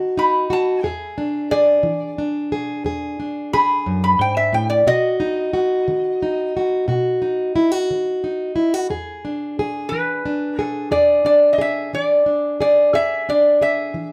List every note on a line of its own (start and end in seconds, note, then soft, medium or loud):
0.00 0.43 D#3 medium
0.00 0.16 D#4 medium
0.00 0.49 F#4 medium
0.00 0.17 A5 medium
0.17 0.80 D#4 medium
0.17 0.51 B5 medium
0.50 0.80 F#4 medium
0.50 0.86 A5 medium
0.83 1.44 E2 medium
0.83 1.50 G#4 medium
0.83 1.50 E5 medium
1.18 2.17 D4 medium
1.51 2.51 G#4 medium
1.51 2.16 D5 medium
1.83 2.44 E3 medium
2.18 3.18 D4 medium
2.52 2.85 G#4 medium
2.84 3.45 E2 medium
2.84 3.53 G#4 medium
3.20 4.83 D4 medium
3.53 4.83 G#4 medium
3.53 3.86 B5 medium
3.86 4.19 F#2 medium
4.04 4.20 B5 medium
4.19 4.53 G#2 medium
4.19 4.37 G5 medium
4.37 4.53 E5 medium
4.53 4.86 A2 medium
4.53 4.70 G5 medium
4.70 4.86 D5 medium
4.87 5.47 B2 medium
4.87 5.52 F#4 medium
4.87 6.84 D#5 loud
5.20 6.21 D#4 medium
5.53 6.54 F#4 medium
5.88 6.48 D#3 medium
6.22 7.21 D#4 medium
6.57 6.87 F#4 medium
6.88 7.48 B2 medium
6.88 7.55 F#4 medium
7.22 8.22 D#4 medium
7.56 7.72 E4 medium
7.72 8.55 F#4 medium
7.90 8.50 D#3 medium
8.24 8.86 D#4 medium
8.56 8.74 E4 medium
8.74 8.90 F#4 medium
8.90 9.50 E2 medium
8.90 9.59 G#4 medium
9.25 10.25 D4 medium
9.59 10.58 G#4 medium
9.89 10.52 E3 medium
9.89 10.63 B4 medium
10.26 11.24 D4 medium
10.59 10.91 G#4 medium
10.63 10.93 A4 medium
10.91 11.52 E2 medium
10.91 11.58 G#4 medium
10.91 11.25 D5 medium
11.25 12.26 D4 medium
11.25 11.52 D5 medium
11.53 11.59 D#5 medium
11.58 12.60 G#4 medium
11.58 11.91 E5 medium
11.93 12.53 E3 medium
11.93 12.60 D5 medium
12.26 12.96 D4 medium
12.61 12.93 G#4 medium
12.61 12.95 D5 medium
12.93 13.54 E2 medium
12.93 13.61 G#4 medium
12.93 13.29 E5 loud
13.29 14.12 D4 medium
13.29 13.62 D5 medium
13.61 14.12 G#4 medium
13.61 14.12 E5 medium
13.94 14.12 E3 medium